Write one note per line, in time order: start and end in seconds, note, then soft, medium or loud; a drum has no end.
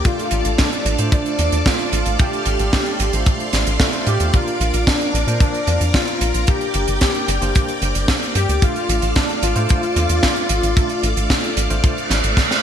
0.00 8.58 D5 medium
0.00 2.15 D6 medium
0.05 0.96 A3 medium
0.05 0.96 D4 medium
0.05 0.60 F4 loud
0.05 0.96 F4 medium
0.05 4.30 A4 medium
0.05 0.96 A4 medium
0.05 6.44 F5 medium
0.05 kick loud
0.05 closed hi-hat medium
0.19 closed hi-hat soft
0.31 0.43 A1 medium
0.31 closed hi-hat medium
0.45 0.57 A1 medium
0.45 closed hi-hat medium
0.58 1.09 D4 loud
0.58 kick loud
0.58 snare loud
0.58 closed hi-hat medium
0.73 closed hi-hat soft
0.85 0.97 A1 medium
0.85 closed hi-hat medium
0.98 1.10 A2 medium
0.98 2.16 A3 medium
0.98 2.16 D4 medium
0.98 2.16 F4 medium
0.98 2.16 C5 medium
0.98 closed hi-hat medium
1.12 1.68 D4 loud
1.12 kick loud
1.12 closed hi-hat medium
1.26 closed hi-hat soft
1.39 1.50 E2 medium
1.39 closed hi-hat medium
1.52 1.64 E2 medium
1.52 closed hi-hat medium
1.66 1.91 F4 medium
1.66 kick loud
1.66 snare loud
1.66 closed hi-hat medium
1.79 closed hi-hat soft
1.92 2.04 A1 medium
1.92 2.17 F4 loud
1.92 closed hi-hat medium
2.06 2.17 A1 medium
2.06 closed hi-hat medium
2.19 3.10 A3 medium
2.19 3.10 D4 medium
2.19 3.10 F4 medium
2.19 3.76 G4 loud
2.19 3.10 A4 medium
2.19 4.31 C6 medium
2.19 kick loud
2.19 closed hi-hat medium
2.33 closed hi-hat soft
2.45 2.57 A1 medium
2.45 closed hi-hat medium
2.59 2.71 A1 medium
2.59 closed hi-hat medium
2.73 kick loud
2.73 snare loud
2.73 closed hi-hat medium
2.86 closed hi-hat soft
3.00 3.11 A1 medium
3.00 closed hi-hat loud
3.13 3.24 A1 medium
3.13 3.77 A3 medium
3.13 3.77 D4 medium
3.13 3.77 F4 medium
3.13 3.77 C5 medium
3.13 closed hi-hat medium
3.26 kick loud
3.26 closed hi-hat medium
3.40 closed hi-hat soft
3.53 3.65 A1 medium
3.53 snare medium
3.53 closed hi-hat medium
3.67 3.78 A1 medium
3.67 closed hi-hat medium
3.80 3.90 A3 medium
3.80 3.90 D4 medium
3.80 3.90 F4 medium
3.80 3.90 A4 loud
3.80 kick loud
3.80 snare loud
3.80 closed hi-hat medium
3.93 4.30 A3 medium
3.93 4.30 D4 medium
3.93 4.30 F4 medium
3.93 4.30 C5 loud
3.93 closed hi-hat soft
4.07 4.18 A2 loud
4.07 4.35 G4 loud
4.07 closed hi-hat medium
4.20 4.32 E2 medium
4.20 closed hi-hat medium
4.33 5.24 A#3 medium
4.33 5.24 D4 medium
4.33 5.24 F4 medium
4.33 4.89 F4 loud
4.33 5.24 A#4 medium
4.33 8.58 A#4 medium
4.33 12.62 D6 medium
4.33 kick loud
4.33 closed hi-hat medium
4.47 closed hi-hat soft
4.60 4.72 A#1 medium
4.60 closed hi-hat medium
4.74 4.85 A#1 medium
4.74 closed hi-hat medium
4.87 5.40 D4 loud
4.87 kick loud
4.87 snare loud
4.87 closed hi-hat medium
5.01 closed hi-hat soft
5.14 5.25 A#1 medium
5.14 closed hi-hat medium
5.27 5.39 A#2 medium
5.27 6.45 A#3 medium
5.27 6.45 D4 medium
5.27 6.45 F4 medium
5.27 6.45 C5 medium
5.27 closed hi-hat medium
5.40 5.96 D4 loud
5.40 kick loud
5.40 closed hi-hat medium
5.54 closed hi-hat soft
5.67 5.79 F2 medium
5.67 closed hi-hat medium
5.81 5.92 F2 medium
5.81 closed hi-hat medium
5.94 6.20 F4 medium
5.94 kick loud
5.94 snare loud
5.94 closed hi-hat medium
6.07 closed hi-hat soft
6.21 6.32 A#1 medium
6.21 6.49 F4 loud
6.21 closed hi-hat medium
6.34 6.46 A#1 medium
6.34 closed hi-hat medium
6.47 7.38 A#3 medium
6.47 7.38 D4 medium
6.47 7.38 G4 medium
6.47 8.05 G4 loud
6.47 7.38 A#4 medium
6.47 8.60 G5 medium
6.47 kick loud
6.47 closed hi-hat medium
6.61 closed hi-hat soft
6.74 6.86 G1 medium
6.74 closed hi-hat medium
6.88 6.99 G1 medium
6.88 closed hi-hat medium
7.01 kick medium
7.01 snare loud
7.01 closed hi-hat medium
7.15 closed hi-hat soft
7.28 7.40 G1 medium
7.28 closed hi-hat loud
7.42 7.53 G1 medium
7.42 8.59 A#3 medium
7.42 8.59 D4 medium
7.42 8.59 G4 medium
7.42 8.59 C5 medium
7.42 closed hi-hat medium
7.55 kick loud
7.55 closed hi-hat medium
7.68 closed hi-hat soft
7.82 7.93 G1 medium
7.82 closed hi-hat medium
7.95 8.07 G1 medium
7.95 closed hi-hat medium
8.08 kick medium
8.08 snare loud
8.08 closed hi-hat medium
8.23 closed hi-hat soft
8.35 8.47 G2 medium
8.35 8.63 G4 loud
8.35 closed hi-hat loud
8.49 8.60 D2 medium
8.49 closed hi-hat medium
8.62 9.53 A3 medium
8.62 9.53 D4 medium
8.62 9.17 F4 loud
8.62 9.53 F4 medium
8.62 9.53 A4 medium
8.62 12.62 A4 medium
8.62 12.62 D5 medium
8.62 12.62 F5 medium
8.62 kick loud
8.62 closed hi-hat medium
8.76 closed hi-hat soft
8.89 9.00 A1 medium
8.89 closed hi-hat loud
9.02 9.14 A1 medium
9.02 closed hi-hat medium
9.16 9.43 D4 medium
9.16 kick loud
9.16 snare loud
9.16 closed hi-hat medium
9.29 closed hi-hat soft
9.42 9.54 A1 medium
9.42 12.33 F4 loud
9.42 closed hi-hat loud
9.56 9.67 A2 medium
9.56 10.73 A3 medium
9.56 10.73 D4 medium
9.56 10.73 F4 medium
9.56 10.73 C5 medium
9.56 closed hi-hat medium
9.69 kick loud
9.69 closed hi-hat medium
9.83 closed hi-hat soft
9.96 10.07 E2 medium
9.96 closed hi-hat medium
10.09 10.21 E2 medium
10.09 closed hi-hat medium
10.23 kick medium
10.23 snare loud
10.23 closed hi-hat medium
10.36 closed hi-hat soft
10.49 10.61 A1 medium
10.49 closed hi-hat loud
10.63 10.74 A1 medium
10.63 closed hi-hat medium
10.76 11.67 A3 medium
10.76 11.67 D4 medium
10.76 11.67 F4 medium
10.76 11.67 A4 medium
10.76 kick loud
10.76 closed hi-hat medium
10.89 closed hi-hat soft
11.03 11.15 A1 medium
11.03 closed hi-hat medium
11.17 11.28 A1 medium
11.17 closed hi-hat medium
11.30 kick medium
11.30 snare loud
11.30 closed hi-hat medium
11.44 closed hi-hat soft
11.57 11.68 A1 medium
11.57 closed hi-hat loud
11.70 11.82 A1 medium
11.70 12.62 A3 medium
11.70 12.62 D4 medium
11.70 12.62 F4 medium
11.70 12.62 C5 medium
11.70 closed hi-hat medium
11.84 kick loud
11.84 closed hi-hat medium
11.84 reverse cymbal medium
11.98 closed hi-hat soft
12.10 12.22 A1 medium
12.10 snare medium
12.10 closed hi-hat medium
12.24 12.35 A1 medium
12.24 closed hi-hat medium
12.37 kick loud
12.37 snare medium
12.37 closed hi-hat medium
12.51 snare medium
12.51 closed hi-hat soft